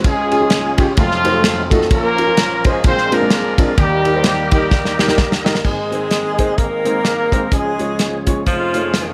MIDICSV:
0, 0, Header, 1, 6, 480
1, 0, Start_track
1, 0, Key_signature, -4, "major"
1, 0, Tempo, 468019
1, 47, Time_signature, 4, 2, 24, 8
1, 9370, End_track
2, 0, Start_track
2, 0, Title_t, "Upright piano"
2, 0, Program_c, 0, 0
2, 44, Note_on_c, 0, 37, 71
2, 45, Note_on_c, 0, 49, 70
2, 321, Note_on_c, 0, 61, 81
2, 332, Note_on_c, 0, 65, 73
2, 340, Note_on_c, 0, 68, 93
2, 384, Note_off_c, 0, 61, 0
2, 389, Note_off_c, 0, 65, 0
2, 394, Note_off_c, 0, 68, 0
2, 413, Note_on_c, 0, 61, 77
2, 421, Note_on_c, 0, 65, 68
2, 431, Note_on_c, 0, 68, 84
2, 546, Note_off_c, 0, 61, 0
2, 549, Note_off_c, 0, 65, 0
2, 554, Note_off_c, 0, 68, 0
2, 795, Note_on_c, 0, 61, 95
2, 808, Note_on_c, 0, 65, 87
2, 818, Note_on_c, 0, 67, 106
2, 918, Note_off_c, 0, 61, 0
2, 924, Note_off_c, 0, 65, 0
2, 930, Note_off_c, 0, 67, 0
2, 961, Note_off_c, 0, 37, 0
2, 961, Note_off_c, 0, 49, 0
2, 1004, Note_on_c, 0, 41, 73
2, 1005, Note_on_c, 0, 29, 73
2, 1277, Note_on_c, 0, 57, 83
2, 1277, Note_on_c, 0, 63, 76
2, 1282, Note_on_c, 0, 65, 78
2, 1291, Note_on_c, 0, 66, 73
2, 1295, Note_on_c, 0, 72, 84
2, 1340, Note_off_c, 0, 57, 0
2, 1340, Note_off_c, 0, 63, 0
2, 1343, Note_off_c, 0, 65, 0
2, 1347, Note_off_c, 0, 66, 0
2, 1349, Note_off_c, 0, 72, 0
2, 1374, Note_on_c, 0, 57, 68
2, 1379, Note_on_c, 0, 63, 71
2, 1380, Note_on_c, 0, 65, 67
2, 1387, Note_on_c, 0, 66, 66
2, 1390, Note_on_c, 0, 69, 85
2, 1504, Note_off_c, 0, 57, 0
2, 1507, Note_off_c, 0, 63, 0
2, 1507, Note_off_c, 0, 65, 0
2, 1510, Note_off_c, 0, 66, 0
2, 1512, Note_off_c, 0, 69, 0
2, 1745, Note_on_c, 0, 57, 97
2, 1755, Note_on_c, 0, 63, 84
2, 1760, Note_on_c, 0, 65, 90
2, 1765, Note_on_c, 0, 66, 88
2, 1768, Note_on_c, 0, 69, 106
2, 1871, Note_off_c, 0, 57, 0
2, 1876, Note_off_c, 0, 63, 0
2, 1879, Note_off_c, 0, 65, 0
2, 1881, Note_off_c, 0, 66, 0
2, 1882, Note_off_c, 0, 69, 0
2, 1919, Note_off_c, 0, 29, 0
2, 1919, Note_off_c, 0, 41, 0
2, 1955, Note_on_c, 0, 34, 74
2, 1956, Note_on_c, 0, 46, 72
2, 2235, Note_on_c, 0, 61, 78
2, 2243, Note_on_c, 0, 65, 72
2, 2256, Note_on_c, 0, 70, 88
2, 2297, Note_off_c, 0, 61, 0
2, 2301, Note_off_c, 0, 65, 0
2, 2308, Note_off_c, 0, 70, 0
2, 2330, Note_on_c, 0, 61, 72
2, 2339, Note_on_c, 0, 65, 68
2, 2348, Note_on_c, 0, 70, 79
2, 2460, Note_off_c, 0, 61, 0
2, 2465, Note_off_c, 0, 65, 0
2, 2469, Note_off_c, 0, 70, 0
2, 2715, Note_on_c, 0, 61, 84
2, 2724, Note_on_c, 0, 65, 72
2, 2736, Note_on_c, 0, 72, 91
2, 2835, Note_off_c, 0, 61, 0
2, 2839, Note_off_c, 0, 65, 0
2, 2845, Note_off_c, 0, 72, 0
2, 2873, Note_off_c, 0, 34, 0
2, 2873, Note_off_c, 0, 46, 0
2, 2916, Note_on_c, 0, 34, 70
2, 2918, Note_on_c, 0, 46, 74
2, 3194, Note_on_c, 0, 56, 80
2, 3196, Note_on_c, 0, 60, 78
2, 3202, Note_on_c, 0, 62, 76
2, 3206, Note_on_c, 0, 65, 79
2, 3211, Note_on_c, 0, 70, 90
2, 3255, Note_off_c, 0, 56, 0
2, 3256, Note_off_c, 0, 60, 0
2, 3259, Note_off_c, 0, 62, 0
2, 3261, Note_off_c, 0, 65, 0
2, 3264, Note_off_c, 0, 70, 0
2, 3288, Note_on_c, 0, 56, 74
2, 3295, Note_on_c, 0, 60, 63
2, 3299, Note_on_c, 0, 62, 64
2, 3307, Note_on_c, 0, 65, 69
2, 3309, Note_on_c, 0, 70, 79
2, 3417, Note_off_c, 0, 56, 0
2, 3421, Note_off_c, 0, 60, 0
2, 3423, Note_off_c, 0, 62, 0
2, 3427, Note_off_c, 0, 65, 0
2, 3428, Note_off_c, 0, 70, 0
2, 3671, Note_on_c, 0, 56, 72
2, 3680, Note_on_c, 0, 60, 70
2, 3681, Note_on_c, 0, 62, 67
2, 3686, Note_on_c, 0, 65, 73
2, 3692, Note_on_c, 0, 70, 85
2, 3791, Note_off_c, 0, 56, 0
2, 3795, Note_off_c, 0, 60, 0
2, 3796, Note_off_c, 0, 62, 0
2, 3798, Note_off_c, 0, 65, 0
2, 3801, Note_off_c, 0, 70, 0
2, 3831, Note_off_c, 0, 34, 0
2, 3833, Note_off_c, 0, 46, 0
2, 3884, Note_on_c, 0, 51, 71
2, 3886, Note_on_c, 0, 39, 74
2, 4153, Note_on_c, 0, 63, 84
2, 4162, Note_on_c, 0, 67, 72
2, 4172, Note_on_c, 0, 70, 87
2, 4213, Note_off_c, 0, 63, 0
2, 4218, Note_off_c, 0, 67, 0
2, 4223, Note_off_c, 0, 70, 0
2, 4254, Note_on_c, 0, 63, 72
2, 4261, Note_on_c, 0, 67, 69
2, 4271, Note_on_c, 0, 72, 79
2, 4380, Note_off_c, 0, 63, 0
2, 4383, Note_off_c, 0, 67, 0
2, 4388, Note_off_c, 0, 72, 0
2, 4639, Note_on_c, 0, 63, 83
2, 4650, Note_on_c, 0, 67, 74
2, 4657, Note_on_c, 0, 70, 85
2, 4754, Note_off_c, 0, 63, 0
2, 4759, Note_off_c, 0, 67, 0
2, 4763, Note_off_c, 0, 70, 0
2, 5111, Note_on_c, 0, 63, 79
2, 5122, Note_on_c, 0, 67, 74
2, 5130, Note_on_c, 0, 70, 85
2, 5172, Note_off_c, 0, 63, 0
2, 5177, Note_off_c, 0, 67, 0
2, 5181, Note_off_c, 0, 70, 0
2, 5206, Note_on_c, 0, 63, 81
2, 5215, Note_on_c, 0, 67, 77
2, 5225, Note_on_c, 0, 70, 88
2, 5335, Note_off_c, 0, 63, 0
2, 5340, Note_off_c, 0, 67, 0
2, 5344, Note_off_c, 0, 70, 0
2, 5584, Note_on_c, 0, 63, 96
2, 5595, Note_on_c, 0, 67, 80
2, 5605, Note_on_c, 0, 70, 102
2, 5707, Note_off_c, 0, 63, 0
2, 5712, Note_off_c, 0, 67, 0
2, 5717, Note_off_c, 0, 70, 0
2, 5756, Note_off_c, 0, 51, 0
2, 5757, Note_off_c, 0, 39, 0
2, 5789, Note_on_c, 0, 44, 56
2, 5791, Note_on_c, 0, 32, 58
2, 6066, Note_on_c, 0, 56, 66
2, 6071, Note_on_c, 0, 60, 62
2, 6074, Note_on_c, 0, 63, 58
2, 6084, Note_on_c, 0, 72, 67
2, 6188, Note_off_c, 0, 56, 0
2, 6191, Note_off_c, 0, 60, 0
2, 6192, Note_off_c, 0, 63, 0
2, 6197, Note_off_c, 0, 72, 0
2, 6547, Note_on_c, 0, 56, 80
2, 6551, Note_on_c, 0, 60, 69
2, 6555, Note_on_c, 0, 63, 72
2, 6564, Note_on_c, 0, 72, 86
2, 6669, Note_off_c, 0, 56, 0
2, 6672, Note_off_c, 0, 60, 0
2, 6673, Note_off_c, 0, 63, 0
2, 6678, Note_off_c, 0, 72, 0
2, 7020, Note_on_c, 0, 56, 62
2, 7026, Note_on_c, 0, 60, 57
2, 7033, Note_on_c, 0, 63, 60
2, 7039, Note_on_c, 0, 72, 71
2, 7147, Note_off_c, 0, 56, 0
2, 7150, Note_off_c, 0, 60, 0
2, 7154, Note_off_c, 0, 63, 0
2, 7157, Note_off_c, 0, 72, 0
2, 7505, Note_on_c, 0, 56, 75
2, 7513, Note_on_c, 0, 60, 69
2, 7520, Note_on_c, 0, 63, 66
2, 7524, Note_on_c, 0, 72, 87
2, 7631, Note_off_c, 0, 56, 0
2, 7635, Note_off_c, 0, 60, 0
2, 7638, Note_off_c, 0, 63, 0
2, 7640, Note_off_c, 0, 72, 0
2, 7676, Note_off_c, 0, 44, 0
2, 7677, Note_off_c, 0, 32, 0
2, 7708, Note_on_c, 0, 49, 55
2, 7709, Note_on_c, 0, 37, 54
2, 7986, Note_on_c, 0, 56, 62
2, 7995, Note_on_c, 0, 61, 57
2, 7997, Note_on_c, 0, 65, 57
2, 8005, Note_on_c, 0, 73, 71
2, 8112, Note_off_c, 0, 56, 0
2, 8117, Note_off_c, 0, 61, 0
2, 8118, Note_off_c, 0, 65, 0
2, 8122, Note_off_c, 0, 73, 0
2, 8474, Note_on_c, 0, 56, 77
2, 8477, Note_on_c, 0, 61, 71
2, 8486, Note_on_c, 0, 65, 69
2, 8492, Note_on_c, 0, 73, 86
2, 8598, Note_off_c, 0, 56, 0
2, 8599, Note_off_c, 0, 61, 0
2, 8604, Note_off_c, 0, 65, 0
2, 8607, Note_off_c, 0, 73, 0
2, 8637, Note_off_c, 0, 49, 0
2, 8638, Note_off_c, 0, 37, 0
2, 8680, Note_on_c, 0, 29, 60
2, 8680, Note_on_c, 0, 41, 59
2, 8959, Note_on_c, 0, 57, 66
2, 8964, Note_on_c, 0, 63, 63
2, 8972, Note_on_c, 0, 65, 59
2, 8981, Note_on_c, 0, 73, 71
2, 9082, Note_off_c, 0, 57, 0
2, 9084, Note_off_c, 0, 63, 0
2, 9088, Note_off_c, 0, 65, 0
2, 9093, Note_off_c, 0, 73, 0
2, 9370, Note_off_c, 0, 29, 0
2, 9370, Note_off_c, 0, 41, 0
2, 9370, End_track
3, 0, Start_track
3, 0, Title_t, "Horn section"
3, 0, Program_c, 1, 61
3, 57, Note_on_c, 1, 65, 77
3, 58, Note_on_c, 1, 61, 70
3, 64, Note_on_c, 1, 56, 91
3, 64, Note_on_c, 1, 68, 99
3, 818, Note_off_c, 1, 56, 0
3, 818, Note_off_c, 1, 68, 0
3, 967, Note_off_c, 1, 65, 0
3, 968, Note_off_c, 1, 61, 0
3, 993, Note_on_c, 1, 53, 112
3, 993, Note_on_c, 1, 65, 122
3, 999, Note_on_c, 1, 60, 89
3, 1001, Note_on_c, 1, 57, 92
3, 1720, Note_off_c, 1, 53, 0
3, 1720, Note_off_c, 1, 65, 0
3, 1916, Note_off_c, 1, 60, 0
3, 1917, Note_off_c, 1, 57, 0
3, 1957, Note_on_c, 1, 61, 88
3, 1958, Note_on_c, 1, 65, 81
3, 1974, Note_on_c, 1, 58, 113
3, 1974, Note_on_c, 1, 70, 123
3, 2688, Note_off_c, 1, 58, 0
3, 2688, Note_off_c, 1, 70, 0
3, 2730, Note_on_c, 1, 56, 93
3, 2730, Note_on_c, 1, 68, 101
3, 2873, Note_off_c, 1, 61, 0
3, 2874, Note_off_c, 1, 65, 0
3, 2915, Note_off_c, 1, 56, 0
3, 2915, Note_off_c, 1, 68, 0
3, 2927, Note_on_c, 1, 68, 92
3, 2929, Note_on_c, 1, 65, 86
3, 2932, Note_on_c, 1, 60, 105
3, 2932, Note_on_c, 1, 72, 114
3, 3192, Note_off_c, 1, 65, 0
3, 3204, Note_on_c, 1, 65, 79
3, 3206, Note_on_c, 1, 62, 70
3, 3208, Note_off_c, 1, 60, 0
3, 3208, Note_off_c, 1, 72, 0
3, 3210, Note_on_c, 1, 58, 93
3, 3210, Note_on_c, 1, 70, 101
3, 3668, Note_off_c, 1, 65, 0
3, 3681, Note_on_c, 1, 53, 88
3, 3681, Note_on_c, 1, 65, 96
3, 3683, Note_off_c, 1, 58, 0
3, 3683, Note_off_c, 1, 70, 0
3, 3834, Note_off_c, 1, 62, 0
3, 3837, Note_off_c, 1, 68, 0
3, 3874, Note_off_c, 1, 53, 0
3, 3874, Note_off_c, 1, 65, 0
3, 3885, Note_on_c, 1, 55, 98
3, 3885, Note_on_c, 1, 67, 107
3, 3886, Note_on_c, 1, 58, 81
3, 3889, Note_on_c, 1, 63, 75
3, 4602, Note_off_c, 1, 55, 0
3, 4602, Note_off_c, 1, 67, 0
3, 4626, Note_off_c, 1, 58, 0
3, 4626, Note_off_c, 1, 63, 0
3, 4638, Note_on_c, 1, 58, 66
3, 4639, Note_on_c, 1, 63, 60
3, 4640, Note_on_c, 1, 55, 82
3, 4640, Note_on_c, 1, 67, 89
3, 5556, Note_off_c, 1, 58, 0
3, 5556, Note_off_c, 1, 63, 0
3, 5557, Note_off_c, 1, 55, 0
3, 5557, Note_off_c, 1, 67, 0
3, 5787, Note_on_c, 1, 56, 77
3, 5787, Note_on_c, 1, 68, 84
3, 5794, Note_on_c, 1, 60, 58
3, 5795, Note_on_c, 1, 63, 67
3, 6711, Note_off_c, 1, 56, 0
3, 6711, Note_off_c, 1, 68, 0
3, 6714, Note_off_c, 1, 60, 0
3, 6714, Note_off_c, 1, 63, 0
3, 6741, Note_on_c, 1, 63, 69
3, 6743, Note_on_c, 1, 58, 88
3, 6743, Note_on_c, 1, 70, 96
3, 7671, Note_off_c, 1, 63, 0
3, 7707, Note_on_c, 1, 65, 65
3, 7708, Note_on_c, 1, 61, 57
3, 7713, Note_off_c, 1, 58, 0
3, 7713, Note_off_c, 1, 70, 0
3, 7714, Note_on_c, 1, 56, 72
3, 7714, Note_on_c, 1, 68, 78
3, 8486, Note_off_c, 1, 56, 0
3, 8486, Note_off_c, 1, 68, 0
3, 8637, Note_off_c, 1, 61, 0
3, 8637, Note_off_c, 1, 65, 0
3, 8678, Note_on_c, 1, 53, 91
3, 8678, Note_on_c, 1, 65, 99
3, 8685, Note_on_c, 1, 56, 69
3, 8686, Note_on_c, 1, 57, 68
3, 9370, Note_off_c, 1, 53, 0
3, 9370, Note_off_c, 1, 56, 0
3, 9370, Note_off_c, 1, 57, 0
3, 9370, Note_off_c, 1, 65, 0
3, 9370, End_track
4, 0, Start_track
4, 0, Title_t, "Tonewheel organ"
4, 0, Program_c, 2, 16
4, 0, Note_on_c, 2, 56, 61
4, 47, Note_on_c, 2, 61, 64
4, 47, Note_on_c, 2, 65, 73
4, 53, Note_on_c, 2, 68, 81
4, 982, Note_off_c, 2, 56, 0
4, 993, Note_off_c, 2, 61, 0
4, 996, Note_on_c, 2, 63, 64
4, 997, Note_off_c, 2, 68, 0
4, 999, Note_on_c, 2, 57, 64
4, 1007, Note_on_c, 2, 54, 79
4, 1940, Note_off_c, 2, 65, 0
4, 1946, Note_off_c, 2, 63, 0
4, 1948, Note_off_c, 2, 57, 0
4, 1952, Note_off_c, 2, 54, 0
4, 1956, Note_on_c, 2, 53, 75
4, 1956, Note_on_c, 2, 61, 66
4, 1960, Note_on_c, 2, 58, 67
4, 1963, Note_on_c, 2, 70, 82
4, 2904, Note_off_c, 2, 53, 0
4, 2904, Note_off_c, 2, 61, 0
4, 2904, Note_on_c, 2, 60, 62
4, 2906, Note_off_c, 2, 58, 0
4, 2906, Note_on_c, 2, 56, 71
4, 2907, Note_on_c, 2, 62, 60
4, 3857, Note_off_c, 2, 60, 0
4, 3858, Note_off_c, 2, 56, 0
4, 3859, Note_off_c, 2, 62, 0
4, 3870, Note_on_c, 2, 55, 73
4, 3870, Note_on_c, 2, 58, 63
4, 3874, Note_on_c, 2, 63, 67
4, 5755, Note_off_c, 2, 70, 0
4, 5771, Note_off_c, 2, 55, 0
4, 5771, Note_off_c, 2, 58, 0
4, 5773, Note_off_c, 2, 63, 0
4, 5778, Note_on_c, 2, 51, 60
4, 5779, Note_on_c, 2, 56, 50
4, 5780, Note_on_c, 2, 60, 51
4, 5783, Note_on_c, 2, 68, 59
4, 7692, Note_off_c, 2, 51, 0
4, 7693, Note_off_c, 2, 60, 0
4, 7715, Note_on_c, 2, 61, 54
4, 7718, Note_on_c, 2, 53, 57
4, 8648, Note_off_c, 2, 56, 0
4, 8650, Note_off_c, 2, 68, 0
4, 8672, Note_off_c, 2, 61, 0
4, 8696, Note_on_c, 2, 68, 61
4, 8697, Note_on_c, 2, 61, 50
4, 8699, Note_on_c, 2, 63, 49
4, 9370, Note_off_c, 2, 53, 0
4, 9370, Note_off_c, 2, 61, 0
4, 9370, Note_off_c, 2, 63, 0
4, 9370, Note_off_c, 2, 68, 0
4, 9370, End_track
5, 0, Start_track
5, 0, Title_t, "Tenor saxophone"
5, 0, Program_c, 3, 66
5, 5795, Note_on_c, 3, 56, 90
5, 6737, Note_on_c, 3, 58, 94
5, 6753, Note_off_c, 3, 56, 0
5, 7710, Note_off_c, 3, 58, 0
5, 7716, Note_on_c, 3, 56, 80
5, 8446, Note_off_c, 3, 56, 0
5, 8681, Note_on_c, 3, 53, 94
5, 9370, Note_off_c, 3, 53, 0
5, 9370, End_track
6, 0, Start_track
6, 0, Title_t, "Drums"
6, 43, Note_on_c, 9, 51, 77
6, 46, Note_on_c, 9, 36, 111
6, 145, Note_off_c, 9, 51, 0
6, 148, Note_off_c, 9, 36, 0
6, 324, Note_on_c, 9, 51, 55
6, 426, Note_off_c, 9, 51, 0
6, 513, Note_on_c, 9, 51, 83
6, 518, Note_on_c, 9, 38, 104
6, 615, Note_off_c, 9, 51, 0
6, 621, Note_off_c, 9, 38, 0
6, 799, Note_on_c, 9, 51, 71
6, 804, Note_on_c, 9, 36, 100
6, 901, Note_off_c, 9, 51, 0
6, 907, Note_off_c, 9, 36, 0
6, 993, Note_on_c, 9, 51, 76
6, 1001, Note_on_c, 9, 36, 114
6, 1095, Note_off_c, 9, 51, 0
6, 1103, Note_off_c, 9, 36, 0
6, 1141, Note_on_c, 9, 38, 38
6, 1243, Note_off_c, 9, 38, 0
6, 1279, Note_on_c, 9, 51, 66
6, 1381, Note_off_c, 9, 51, 0
6, 1476, Note_on_c, 9, 38, 127
6, 1483, Note_on_c, 9, 51, 83
6, 1578, Note_off_c, 9, 38, 0
6, 1586, Note_off_c, 9, 51, 0
6, 1757, Note_on_c, 9, 36, 101
6, 1761, Note_on_c, 9, 51, 70
6, 1860, Note_off_c, 9, 36, 0
6, 1862, Note_on_c, 9, 38, 38
6, 1864, Note_off_c, 9, 51, 0
6, 1955, Note_on_c, 9, 51, 81
6, 1957, Note_on_c, 9, 36, 122
6, 1965, Note_off_c, 9, 38, 0
6, 2058, Note_off_c, 9, 51, 0
6, 2059, Note_off_c, 9, 36, 0
6, 2238, Note_on_c, 9, 51, 57
6, 2341, Note_off_c, 9, 51, 0
6, 2432, Note_on_c, 9, 51, 80
6, 2437, Note_on_c, 9, 38, 98
6, 2534, Note_off_c, 9, 51, 0
6, 2540, Note_off_c, 9, 38, 0
6, 2711, Note_on_c, 9, 51, 74
6, 2718, Note_on_c, 9, 36, 103
6, 2814, Note_off_c, 9, 51, 0
6, 2821, Note_off_c, 9, 36, 0
6, 2911, Note_on_c, 9, 51, 74
6, 2917, Note_on_c, 9, 36, 114
6, 3013, Note_off_c, 9, 51, 0
6, 3020, Note_off_c, 9, 36, 0
6, 3054, Note_on_c, 9, 38, 37
6, 3156, Note_off_c, 9, 38, 0
6, 3201, Note_on_c, 9, 51, 66
6, 3303, Note_off_c, 9, 51, 0
6, 3389, Note_on_c, 9, 38, 123
6, 3397, Note_on_c, 9, 51, 84
6, 3492, Note_off_c, 9, 38, 0
6, 3500, Note_off_c, 9, 51, 0
6, 3674, Note_on_c, 9, 36, 105
6, 3676, Note_on_c, 9, 51, 76
6, 3776, Note_off_c, 9, 36, 0
6, 3779, Note_off_c, 9, 51, 0
6, 3873, Note_on_c, 9, 51, 82
6, 3874, Note_on_c, 9, 36, 116
6, 3976, Note_off_c, 9, 51, 0
6, 3977, Note_off_c, 9, 36, 0
6, 4155, Note_on_c, 9, 51, 55
6, 4258, Note_off_c, 9, 51, 0
6, 4346, Note_on_c, 9, 51, 85
6, 4352, Note_on_c, 9, 38, 109
6, 4449, Note_off_c, 9, 51, 0
6, 4454, Note_off_c, 9, 38, 0
6, 4629, Note_on_c, 9, 51, 73
6, 4636, Note_on_c, 9, 36, 96
6, 4732, Note_off_c, 9, 51, 0
6, 4738, Note_off_c, 9, 36, 0
6, 4831, Note_on_c, 9, 38, 63
6, 4835, Note_on_c, 9, 36, 111
6, 4933, Note_off_c, 9, 38, 0
6, 4938, Note_off_c, 9, 36, 0
6, 4978, Note_on_c, 9, 38, 58
6, 5081, Note_off_c, 9, 38, 0
6, 5121, Note_on_c, 9, 38, 83
6, 5214, Note_off_c, 9, 38, 0
6, 5214, Note_on_c, 9, 38, 68
6, 5312, Note_off_c, 9, 38, 0
6, 5312, Note_on_c, 9, 38, 104
6, 5314, Note_on_c, 9, 36, 99
6, 5415, Note_off_c, 9, 38, 0
6, 5417, Note_off_c, 9, 36, 0
6, 5458, Note_on_c, 9, 38, 88
6, 5560, Note_off_c, 9, 38, 0
6, 5600, Note_on_c, 9, 38, 117
6, 5693, Note_off_c, 9, 38, 0
6, 5693, Note_on_c, 9, 38, 95
6, 5791, Note_on_c, 9, 36, 88
6, 5793, Note_on_c, 9, 49, 74
6, 5795, Note_off_c, 9, 38, 0
6, 5894, Note_off_c, 9, 36, 0
6, 5896, Note_off_c, 9, 49, 0
6, 6075, Note_on_c, 9, 42, 56
6, 6178, Note_off_c, 9, 42, 0
6, 6263, Note_on_c, 9, 42, 83
6, 6269, Note_on_c, 9, 38, 82
6, 6366, Note_off_c, 9, 42, 0
6, 6371, Note_off_c, 9, 38, 0
6, 6549, Note_on_c, 9, 42, 68
6, 6552, Note_on_c, 9, 36, 79
6, 6651, Note_off_c, 9, 42, 0
6, 6655, Note_off_c, 9, 36, 0
6, 6748, Note_on_c, 9, 42, 74
6, 6751, Note_on_c, 9, 36, 92
6, 6850, Note_off_c, 9, 42, 0
6, 6853, Note_off_c, 9, 36, 0
6, 7030, Note_on_c, 9, 42, 68
6, 7132, Note_off_c, 9, 42, 0
6, 7228, Note_on_c, 9, 38, 97
6, 7235, Note_on_c, 9, 42, 83
6, 7330, Note_off_c, 9, 38, 0
6, 7338, Note_off_c, 9, 42, 0
6, 7510, Note_on_c, 9, 36, 82
6, 7517, Note_on_c, 9, 42, 70
6, 7612, Note_off_c, 9, 36, 0
6, 7620, Note_off_c, 9, 42, 0
6, 7708, Note_on_c, 9, 42, 81
6, 7710, Note_on_c, 9, 36, 97
6, 7811, Note_off_c, 9, 42, 0
6, 7813, Note_off_c, 9, 36, 0
6, 7994, Note_on_c, 9, 42, 53
6, 8096, Note_off_c, 9, 42, 0
6, 8194, Note_on_c, 9, 42, 82
6, 8200, Note_on_c, 9, 38, 80
6, 8297, Note_off_c, 9, 42, 0
6, 8303, Note_off_c, 9, 38, 0
6, 8478, Note_on_c, 9, 42, 69
6, 8482, Note_on_c, 9, 36, 79
6, 8581, Note_off_c, 9, 42, 0
6, 8585, Note_off_c, 9, 36, 0
6, 8681, Note_on_c, 9, 42, 69
6, 8683, Note_on_c, 9, 36, 89
6, 8783, Note_off_c, 9, 42, 0
6, 8786, Note_off_c, 9, 36, 0
6, 8963, Note_on_c, 9, 42, 67
6, 9066, Note_off_c, 9, 42, 0
6, 9165, Note_on_c, 9, 38, 106
6, 9173, Note_on_c, 9, 42, 85
6, 9268, Note_off_c, 9, 38, 0
6, 9276, Note_off_c, 9, 42, 0
6, 9370, End_track
0, 0, End_of_file